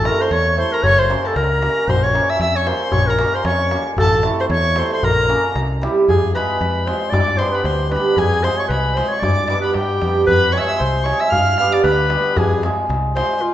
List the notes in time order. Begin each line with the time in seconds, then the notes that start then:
0.03 A3 C4 E4 A4 A#5, darbuka tek
0.07 A#4
0.21 C5 C6
0.31 E2 C#5 C#6, darbuka tek
0.57 A3 C4 E4 A4 C5 C6
0.72 A#4 A#5
0.83 F#1 C#5 C#6, darbuka dum
0.98 C5 C6
1.08 A#3 C#4 F#4 A#4, darbuka tek
1.25 A4 A5, darbuka tek
1.35 C#2 A#4 A#5, darbuka tek
1.51 darbuka tek
1.61 A#3 C#4 F#4 A#4, darbuka tek
1.77 darbuka tek
1.88 A#1 C5 C6, darbuka dum
2.03 C#5 C#6
2.13 A#3 C#4 F4 A#4, darbuka tek
2.29 E5 E6
2.39 F2 E5 E6, darbuka tek
2.55 C#5 C#6, darbuka tek
2.66 A#3 C#4 F4 A#4 C5 C6, darbuka tek
2.92 A#1 C#5 C#6, darbuka dum
3.07 A#4 A#5
3.19 A#3 C#4 F4 A#4, darbuka tek
3.34 C5 C6
3.45 F2 C#5 C#6, darbuka tek
3.60 darbuka tek
3.70 A#3 C#4 F4 A#4, darbuka tek
3.96 A1 A4 A5, darbuka dum
4.23 A3 C4 E4 A4, darbuka tek
4.40 C5 C6
4.50 E2 C#5 C#6, darbuka tek
4.65 darbuka tek
4.76 A3 C4 E4 A4 C5 C6, darbuka tek
4.92 C5 C6
5.03 A#1 A#4 A#5, darbuka dum
5.18 darbuka tek
5.28 A#3 C#4 F4 A#4, darbuka tek
5.45 darbuka tek
5.55 C2, darbuka tek
5.72 darbuka tek
5.81 G3 C4 E4 G4, darbuka tek
5.98 darbuka tek
6.08 F2 G#4 G#5, darbuka dum
6.34 G#3 C4 F4 G#4 B4 B5, darbuka tek
6.51 darbuka tek
6.61 F2, darbuka tek
6.86 G#3 C4 F4 G#4 C5 C6, darbuka tek
7.10 G2 D5 D6, darbuka dum
7.37 G3 B3 D4 C5 C6, darbuka tek
7.41 G4
7.52 B4 B5, darbuka tek
7.64 D2 C5 C6, darbuka tek
7.90 G3 B3 D4 G4 B4 B5, darbuka tek
8.16 F2 G#4 G#5, darbuka dum
8.43 G#3 C4 F4 G#4 C5 C6, darbuka tek
8.57 C#5 C#6, darbuka tek
8.68 C2 B4 B5, darbuka tek
8.94 G#3 C4 F4 C5 C6, darbuka tek
8.98 G#4
9.08 C#5 C#6
9.19 G2 D5 D6, darbuka dum
9.38 darbuka tek
9.45 D5 D6, darbuka tek
9.50 G3 B3 D4 G4
9.61 B4 B5, darbuka tek
9.74 G2 G4 G5, darbuka tek
10.02 F2 G3 B3 D4 G4, darbuka tek
10.26 F2 B4 B5, darbuka dum
10.52 G#3 C4 F4 G#4 C#5 C#6, darbuka tek
10.57 C#5 E5 C#6 E6
10.66 E5 E6, darbuka tek
10.77 C2 C5 C6, darbuka tek
11.03 G#3 C4 F4 C#5 C#6, darbuka tek
11.07 G#4
11.19 E5 E6
11.30 G2 F5 F6, darbuka dum
11.58 G3 B3 D4 G4 F5 F6, darbuka tek
11.72 D5 D6, darbuka tek
11.84 D2 B4 B5, darbuka tek
12.10 G3 B3 D4 G4, darbuka tek
12.36 F2 G#4 G#5, darbuka dum
12.63 G#3 C4 F4 G#4, darbuka tek
12.79 darbuka tek
12.89 C2, darbuka tek
13.16 G#3 C4 F4 G#4 C5 C6, darbuka tek
13.42 F4